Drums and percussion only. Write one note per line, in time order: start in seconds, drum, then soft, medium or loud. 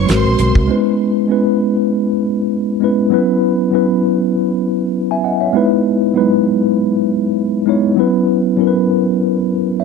0.09 snare loud
0.09 closed hi-hat medium
0.09 muted conga soft
0.09 high conga medium
0.39 closed hi-hat medium
0.39 high conga medium
0.39 low conga medium
0.55 kick medium